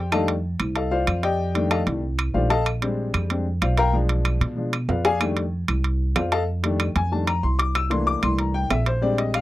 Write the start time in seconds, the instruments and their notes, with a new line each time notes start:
Already playing: upright bass F2
0.12 upright piano D#3 G3 A3 D4 A4 D#5 F5 A5, high timbale, claves
0.28 high timbale
0.59 upright bass C2, high timbale, claves
0.75 upright piano A4 D#5 F5 A5, high timbale
0.91 upright piano F4 C5 D5 F5
1.07 upright bass F2, high timbale, claves
1.23 upright piano G4 D5 D#5 G5, high timbale
1.54 upright piano D#3 G3 A3 D4, high timbale
1.71 upright piano A4 D#5 F5 A5, high timbale, claves
1.87 upright bass C2, high timbale
2.19 high timbale, claves
2.34 upright bass A#1, upright piano D#3 G3 A3 D4 F4 C5 D5 F5
2.50 upright piano A4 D#5 F5 A5, high timbale
2.66 high timbale, claves
2.82 upright piano G3 G#3 C4 D4, high timbale
3.14 upright bass F2, high timbale, claves
3.30 upright piano G3 G#3 C4 D4, high timbale
3.62 upright bass B1, upright piano F4 C5 D5 F5, high timbale, claves
3.77 upright piano A#4 F5 G5 A#5, high timbale
3.93 upright piano F3 G#3 D4
4.09 high timbale
4.25 high timbale, claves
4.41 upright bass B2, high timbale
4.56 upright piano F3 G#3 D4
4.73 high timbale, claves
4.89 upright bass F2, upright piano F4 B4 D5 F5, low timbale
5.05 upright piano G#4 D5 F5 G#5, high timbale
5.20 upright piano D#3 G3 A3 D4, high timbale, claves
5.37 high timbale
5.68 upright bass C2, high timbale, claves
5.84 high timbale
6.16 upright bass F2, upright piano F4 C5 D5 F5, high timbale, low timbale, claves
6.32 upright piano A4 D#5 F5 A5, high timbale
6.63 upright piano D#3 G3 A3 D4, high timbale
6.80 high timbale, claves
6.96 upright bass F2, upright piano G#5, high timbale
7.11 upright piano D#3 G3 A3 D4 A5
7.27 upright piano A#5, high timbale, claves
7.43 upright bass C2, upright piano C6
7.59 upright piano D6, high timbale
7.75 upright piano E6, high timbale, claves
7.90 upright piano E3 A3 A#3 D4 C6, high timbale
8.07 upright piano D6
8.22 upright bass C2, upright piano C6, high timbale, claves
8.38 upright piano A#5, high timbale
8.54 upright piano G5
8.70 upright bass A#1, upright piano E5, high timbale, low timbale, claves
8.86 upright piano C5, high timbale
9.02 upright piano G3 G#3 C4 D4 D5
9.18 upright piano D#5, high timbale
9.34 upright piano F5, high timbale, claves